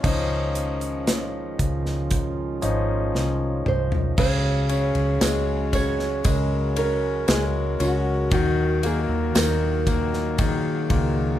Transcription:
0.03 C#2 D#3 F3 G#3 C#4 D#4 F4, kick, crash
0.55 closed hi-hat
0.81 closed hi-hat
1.07 snare, closed hi-hat
1.59 C#2, kick, closed hi-hat
1.86 snare
2.11 kick, closed hi-hat
2.62 G#1 F3 C#4 D#4, closed hi-hat
3.15 C2, snare
3.66 C2 C5, mid tom
3.92 floor tom
4.18 C#2 C#3 F#3 G#3 F#4 G#4 C#5, kick, crash, tambourine
4.69 C#4, ride, tambourine
4.95 C#2, ride
5.21 C#2 G#3, snare, ride, tambourine
5.73 C#4 C#5, kick, ride, tambourine
5.99 snare
6.24 C#2 G#3 A#4, kick, ride, tambourine
6.76 C#4 A#4, ride
7.28 C#2 G#3 G#4, snare, ride, tambourine
7.80 C#2 C#4 F#4, ride, tambourine
8.31 D#2 A#2 D#3 F#3 F#4, kick, ride, tambourine
8.83 A#3 G#4, ride, tambourine
9.09 D#2
9.35 D#2 D#3 A#4, snare, ride, tambourine
9.87 A#3, kick, ride, tambourine
10.13 snare
10.38 D#3 G#4, kick, ride, tambourine
10.90 C#2 A#2, kick, ride

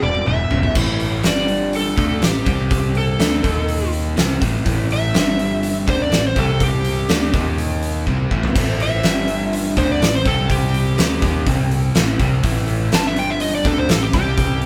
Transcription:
Already playing: E2 B2
0.02 E1 D5, high tom
0.15 high tom
0.26 E1 E2 C#3 E5, mid tom
0.51 E1 E2 C#3, floor tom
0.63 floor tom
0.75 A1 A2 E3 A3, kick, crash
1.00 open hi-hat
1.24 G1 G2 D3 G3, snare, open hi-hat
1.28 D5
1.48 open hi-hat
1.73 A4, open hi-hat
1.96 D2 D3 A3 D4, kick, open hi-hat
2.22 A1 A2 E3 G4, snare, open hi-hat
2.45 C2 C3 G3 C4, kick, open hi-hat
2.71 kick, open hi-hat
2.95 A4, open hi-hat
3.19 D2 D3 A3 D4, snare, open hi-hat
3.43 D#2 D#3 A#3 D#4, kick, open hi-hat
3.69 open hi-hat
3.93 open hi-hat
4.16 C2 C3 G3 C4, snare, open hi-hat
4.40 A1 A2 E3 A3, kick, open hi-hat
4.65 A1 A2 E3 A3, kick, open hi-hat
4.91 E5, open hi-hat
5.14 G1 G2 D3 G3, snare, open hi-hat
5.39 open hi-hat
5.63 open hi-hat
5.87 D2 D3 A3 D4 C5, kick, open hi-hat
6.02 D5
6.12 A1 A2 E3, snare, open hi-hat
6.27 C5
6.36 C2 C3 G3 C4 A4, kick, open hi-hat
6.60 G4, kick, open hi-hat
6.85 open hi-hat
7.09 D2 D3 A3 D4, snare, open hi-hat
7.34 D#2 D#3 A#3 D#4, kick, open hi-hat
7.58 open hi-hat
7.83 open hi-hat
8.06 C2 C3 G3 C4, kick
8.31 A1 A2 E3 A3, kick
8.43 floor tom
8.55 A1 A2 E3 A3, kick, open hi-hat, crash
8.80 E5, open hi-hat
9.03 G1 G2 D3 G3, snare, open hi-hat
9.28 open hi-hat
9.53 open hi-hat
9.77 D2 D3 A3 D4 C5, kick, open hi-hat
9.92 D5
10.01 A1 A2 E3, snare, open hi-hat
10.15 C5
10.25 C2 C3 G3 C4 A4, kick, open hi-hat
10.50 G4, kick, open hi-hat
10.74 open hi-hat
10.98 D2 D3 A3 D4, snare, open hi-hat
11.22 D#2 D#3 A#3 D#4, kick, open hi-hat
11.47 C2 C3 G3 C4, kick, open hi-hat
11.71 open hi-hat
11.95 A1 A2 E3 A3, snare, open hi-hat
12.19 C2 C3 G3 C4, kick, open hi-hat
12.43 A1 A2 E3 A3, kick, open hi-hat
12.68 open hi-hat
12.92 G1 G2 D3 G3 A5, snare, open hi-hat
13.07 E5
13.16 G5, open hi-hat
13.30 E5
13.40 D#5, open hi-hat
13.55 D5
13.65 D2 D3 A3 D4 A4, kick, open hi-hat
13.78 C5
13.89 A1 A2 E3 A4, snare, open hi-hat
14.03 G4
14.13 C2 C3 G3 C4 G4, kick, open hi-hat
14.38 kick, open hi-hat
14.62 open hi-hat

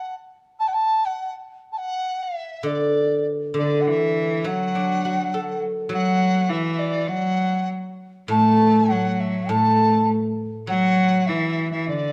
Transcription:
Already playing: F#5
0.59 A5
0.68 F#5
0.73 A5
1.05 F#5
1.72 A5
1.77 F#5
2.23 E5
2.63 D3 D5
3.54 D3
3.59 D5
3.81 F#5
3.87 E3 E5
4.44 F#3 F#5
4.75 D4
5.05 F#4
5.34 A4
5.89 F#3
5.94 F#5
6.49 E3 E5
6.79 D5
7.08 F#3 F#5
8.28 A2 A3 A5
8.90 F#3 F#5
9.20 E5
9.49 A2 A3 A5
10.67 F#3 F#5
11.27 E3 E5
11.71 E3 E5
11.88 D3 D5

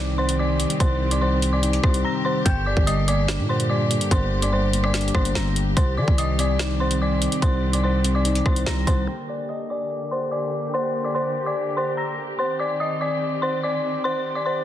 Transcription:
Already playing: C2 C3 D#3 G3 C4 D#4 G4 D5 D6
0.18 C4 C5 C6
0.29 closed hi-hat
0.38 G3 D5 D6
0.60 closed hi-hat
0.70 closed hi-hat
0.80 C2 C3 C5 C6, kick, closed hi-hat
1.01 D#3
1.11 D5 D6, closed hi-hat
1.21 G3 C5 C6
1.42 C4, closed hi-hat
1.53 D5 D6
1.63 D#4, closed hi-hat
1.73 closed hi-hat
1.83 C2 C4 C5 C6, kick, cross-stick
1.94 closed hi-hat
2.04 G3 A#5 A#6
2.25 C5 C6
2.45 G1 G2 D3 A#3 G5 G6, kick, closed hi-hat
2.66 D3 D5 D6
2.77 G1, kick
2.87 G3 D#5 D#6, closed hi-hat
3.08 A#3 D5 D6, closed hi-hat
3.28 D4, snare, closed hi-hat
3.39 A#2
3.49 A#3 C5 C6
3.60 closed hi-hat
3.70 G3 D5 D6
3.91 closed hi-hat
4.01 closed hi-hat
4.11 G1 G2 C5 C6, kick, closed hi-hat
4.32 D3
4.42 D5 D6, closed hi-hat
4.52 G3 C5 C6
4.73 A#3, closed hi-hat
4.84 D5 D6, cross-stick
4.94 D4, snare, closed hi-hat
5.01 closed hi-hat
5.08 closed hi-hat
5.15 G1 A#3 C5 C6, kick, cross-stick
5.25 closed hi-hat
5.35 G1 G3 A#5 A#6, snare
5.56 closed hi-hat
5.77 C2 C3 D#3 C4 C5 C6, kick, closed hi-hat
5.97 D#3 D5 D6
6.08 C2, kick
6.18 G3 D#5 D#6, closed hi-hat
6.39 C4 D5 D6, closed hi-hat
6.59 D#4, snare, closed hi-hat
6.80 C4 C5 C6
6.91 closed hi-hat
7.00 G3 D5 D6
7.22 closed hi-hat
7.32 closed hi-hat
7.42 C2 C3 C5 C6, kick, closed hi-hat
7.63 D#3
7.73 D5 D6, closed hi-hat
7.84 G3 C5 C6
8.04 C4, closed hi-hat
8.15 D5 D6
8.25 D#4, closed hi-hat
8.35 closed hi-hat
8.46 C2 C5 C6, kick, cross-stick
8.56 closed hi-hat
8.66 C2 G3 A#5 A#6, snare
8.87 C2 C5 C6, kick, closed hi-hat
9.07 D3 A#3 G4 G5 G6
9.29 D5 D6
9.49 D#5 D#6
9.70 D5 D6
10.11 C5 C6
10.31 D5 D6
10.74 C5 C6
11.04 D5 D6
11.14 C5 C6
11.46 D5 D6
11.77 C5 C6
11.97 A#5 A#6
12.39 D#3 C4 C5 C6
12.59 D5 D6
12.80 D#5 D#6
13.01 D5 D6
13.42 C5 C6
13.63 D5 D6
14.04 C5 C6
14.35 D5 D6
14.46 C5 C6

